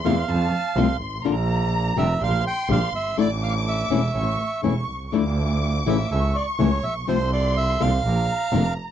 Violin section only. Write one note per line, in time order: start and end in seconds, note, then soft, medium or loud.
0.00 0.29 C6 loud
0.30 0.77 A5 loud
0.77 1.24 C6 loud
1.24 2.20 A#5 loud
2.22 3.14 C6 loud
3.17 4.14 D6 loud
4.15 4.61 C#6 loud
4.64 5.03 C#6 loud
5.06 5.13 C#6 medium
5.13 6.11 D6 loud
6.11 7.08 C#6 loud
7.09 8.06 C6 loud
8.05 8.91 A#5 loud